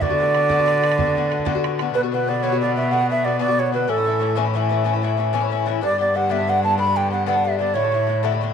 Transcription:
0.01 A2 D3 B3 F#4 D5, bodhran
0.10 D3 B3 F#4, bodhran
0.18 A2 D3 B3 F#4, bodhran
0.33 A2 D3 B3 F#4, bodhran
0.49 A2 D3 B3 F#4, bodhran
0.58 D3 B3 F#4, bodhran
0.66 A2 D3 B3 F#4, bodhran
0.82 A2 D3 B3 F#4, bodhran
0.92 bodhran
0.98 A2 D3 B3 F#4, bodhran
1.06 D3 B3 F#4
1.15 A2 D3 B3 F#4, bodhran
1.30 A2 D3 B3 F#4, bodhran
1.39 bodhran
1.45 A2 D3 B3 F#4, bodhran
1.55 D3 B3 F#4, bodhran
1.64 A2 D3 B3 F#4, bodhran
1.79 A2 D3 B3 F#4, bodhran
1.94 B2 D3 B3 F#4 B4
2.03 D3 B3 F#4
2.12 B2 D3 B3 F#4 B4
2.27 B2 D3 B3 F#4 D5
2.43 B2 D3 B3 F#4 C#5
2.52 D3 B3 F#4
2.61 B2 D3 B3 F#4 D5
2.76 B2 D3 B3 F#4 E5
2.91 B2 D3 B3 F#4 F#5
3.01 D3 B3 F#4
3.10 B2 D3 B3 F#4 E5
3.24 B2 D3 B3 F#4 D5
3.39 B2 D3 B3 F#4 D5
3.48 D3 B3 F#4
3.57 B2 D3 B3 F#4 C#5
3.72 B2 D3 B3 F#4 B4
3.88 A2 E3 C#4 E4 A4
3.96 E3 C#4 E4
4.04 A2 E3 C#4 E4
4.20 A2 E3 C#4 E4
4.35 A2 E3 C#4 E4
4.45 E3 C#4 E4
4.53 A2 E3 C#4 E4
4.69 A2 E3 C#4 E4
4.84 A2 E3 C#4 E4
4.93 E3 C#4 E4
5.02 A2 E3 C#4 E4
5.17 A2 E3 C#4 E4
5.33 A2 E3 C#4 E4
5.41 E3 C#4 E4
5.50 A2 E3 C#4 E4
5.66 A2 E3 C#4 E4
5.81 G2 D3 B3 D4 D5
5.89 D3 B3 D4
5.98 G2 D3 B3 D4 D5
6.14 G2 D3 B3 D4 F#5
6.29 G2 D3 B3 D4 E5
6.38 D3 B3 D4
6.47 G2 D3 B3 D4 F#5
6.62 G2 D3 B3 D4 A5
6.77 G2 D3 B3 D4 B5
6.86 D3 B3 D4
6.95 G2 D3 B3 D4 G5
7.11 G2 D3 B3 D4 F#5
7.26 G2 D3 B3 D4 F#5
7.35 D3 B3 D4
7.44 G2 D3 B3 D4 E5
7.59 G2 D3 B3 D4 D5
7.74 A2 D3 A3 E4 C#5
7.83 D3 A3 E4
7.92 A2 D3 A3 E4
8.07 A2 D3 A3 E4
8.23 A2 D3 A3 E4
8.32 D3 A3 E4
8.41 A2 D3 A3 E4

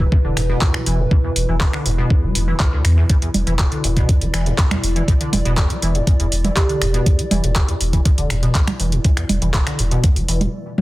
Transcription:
Already playing: B2 E3 E4 B4
0.12 E2, kick
0.25 E1 D3
0.37 E1 F2, finger snap, open hi-hat
0.50 B2
0.61 E2, kick, clap
0.74 G3, finger snap
0.86 E1 E3, open hi-hat
0.99 A2
1.11 E2, kick
1.24 E2
1.36 E1, open hi-hat
1.48 E1 E3
1.61 E2, kick, clap
1.73 D3, finger snap
1.86 E1 F2, open hi-hat
1.98 B2
2.10 E2, kick
2.23 E1 G3
2.35 E1 E2, open hi-hat
2.48 E3
2.60 E2, kick, clap
2.73 D2
2.85 E2, finger snap, open hi-hat
2.97 E2
3.10 E2 D5, kick, closed hi-hat
3.22 E2, closed hi-hat
3.34 E1, open hi-hat, low conga
3.47 E1 E3, closed hi-hat
3.59 E2, kick, clap, closed hi-hat
3.72 D3, closed hi-hat
3.84 E1 F2, open hi-hat
3.97 B2, kick, closed hi-hat
4.09 E2, kick, closed hi-hat
4.21 E1 G3, closed hi-hat
4.34 E1 E3, finger snap, open hi-hat
4.46 A2, closed hi-hat
4.58 E2, kick, clap, closed hi-hat
4.71 E2, finger snap, closed hi-hat, low conga
4.83 E1, open hi-hat
4.96 E3, closed hi-hat
5.08 E2, kick, closed hi-hat
5.21 D3, closed hi-hat
5.33 E1 F2, open hi-hat, low conga
5.45 E1 B2, closed hi-hat
5.57 E2, kick, clap, closed hi-hat
5.70 G3, closed hi-hat
5.82 E1 E3, open hi-hat
5.95 A2, closed hi-hat
6.07 E2, kick, closed hi-hat
6.20 E1 E2, closed hi-hat
6.32 E1, open hi-hat
6.45 E3, closed hi-hat, low conga
6.57 E2 G4, kick, clap, closed hi-hat
6.69 D3, closed hi-hat
6.81 E1 F2, finger snap, open hi-hat
6.94 B2, closed hi-hat
7.06 E2, kick, closed hi-hat
7.19 G3, closed hi-hat
7.31 E1 E3, open hi-hat, low conga
7.44 E1 A2, closed hi-hat
7.56 E2, kick, clap, closed hi-hat
7.68 E2, closed hi-hat
7.81 E1, open hi-hat
7.93 E3, kick, closed hi-hat
8.05 E2, kick, closed hi-hat
8.18 E1 D3, closed hi-hat
8.30 E1 F2, finger snap, open hi-hat
8.43 B2, closed hi-hat
8.55 E2, kick, clap, closed hi-hat
8.67 G3, finger snap, closed hi-hat, low conga
8.80 E1 E3, open hi-hat
8.92 A2, closed hi-hat
9.04 E2, kick, closed hi-hat
9.17 E2, finger snap, closed hi-hat
9.29 E1, open hi-hat, low conga
9.42 E1 E3, closed hi-hat
9.54 E2, kick, clap, closed hi-hat
9.67 D3, finger snap, closed hi-hat
9.79 E1 F2, open hi-hat
9.91 B2, closed hi-hat
10.04 E2, kick, closed hi-hat
10.16 E1 G3, open hi-hat
10.28 E1 E3, open hi-hat
10.41 A2, closed hi-hat, low conga
10.78 high tom

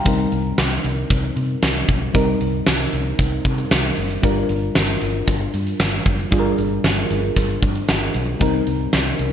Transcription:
0.05 C2 G3 C4 D#4 A#4, kick, closed hi-hat
0.32 C2, closed hi-hat
0.58 C2, snare, closed hi-hat, tambourine
0.84 C2, closed hi-hat
1.10 C2, kick, closed hi-hat
1.36 C3, closed hi-hat
1.62 C2, snare, closed hi-hat, tambourine
1.89 B1, kick, closed hi-hat
2.13 C2 G3 C4 D#4 A#4, kick, closed hi-hat
2.40 C2, closed hi-hat
2.67 C2, snare, closed hi-hat, tambourine
2.93 C2, closed hi-hat
3.19 C2, kick, closed hi-hat
3.45 C3, kick, closed hi-hat
3.58 closed hi-hat
3.71 C2, snare, closed hi-hat, tambourine
3.97 F#1, open hi-hat
4.10 closed hi-hat
4.22 G1 G3 D4 F4 A#4, kick, closed hi-hat
4.49 G1, closed hi-hat
4.75 G1, snare, closed hi-hat, tambourine
5.02 G1, closed hi-hat
5.28 G1, kick, closed hi-hat
5.54 G2, closed hi-hat
5.67 closed hi-hat
5.80 G1, snare, closed hi-hat, tambourine
6.06 F#1, kick, closed hi-hat
6.19 closed hi-hat
6.31 G1 G3 D4 F4 G#4, kick, closed hi-hat
6.39 A#4
6.58 G1, closed hi-hat
6.84 G1, snare, closed hi-hat, tambourine
7.10 G1, closed hi-hat
7.36 G1, kick, closed hi-hat
7.62 G2, kick, closed hi-hat
7.75 closed hi-hat
7.88 G1, snare, closed hi-hat, tambourine
8.14 B1, closed hi-hat
8.40 C2 G3 C4 D#4 A#4, kick, closed hi-hat
8.67 C2, closed hi-hat
8.93 C2, snare, closed hi-hat, tambourine
9.19 C2, closed hi-hat

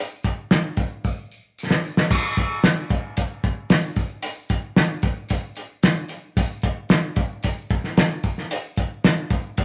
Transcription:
0.23 kick, closed hi-hat, tambourine
0.51 snare, closed hi-hat, tambourine
0.77 kick, closed hi-hat, tambourine
1.04 kick, tambourine
1.31 tambourine
1.58 tambourine
1.71 snare
1.84 tambourine
1.97 snare
2.11 kick, crash, tambourine
2.36 kick, closed hi-hat, tambourine
2.64 snare, closed hi-hat, tambourine
2.90 kick, closed hi-hat, tambourine
3.17 kick, closed hi-hat, tambourine
3.44 kick, closed hi-hat, tambourine
3.70 snare, closed hi-hat, tambourine
3.96 kick, closed hi-hat, tambourine
4.23 closed hi-hat, tambourine
4.49 kick, closed hi-hat, tambourine
4.76 snare, closed hi-hat, tambourine
5.02 kick, closed hi-hat, tambourine
5.29 kick, closed hi-hat, tambourine
5.56 closed hi-hat, tambourine
5.83 snare, closed hi-hat, tambourine
6.09 closed hi-hat, tambourine
6.37 kick, closed hi-hat, tambourine
6.62 kick, closed hi-hat, tambourine
6.89 snare, closed hi-hat, tambourine
7.16 kick, closed hi-hat, tambourine
7.43 kick, closed hi-hat, tambourine
7.70 kick, closed hi-hat, tambourine
7.84 snare
7.97 snare, closed hi-hat, tambourine
8.23 kick, closed hi-hat, tambourine
8.38 snare
8.51 closed hi-hat, tambourine
8.76 kick, closed hi-hat, tambourine
9.04 snare, closed hi-hat, tambourine
9.30 kick, closed hi-hat, tambourine
9.57 kick, closed hi-hat, tambourine

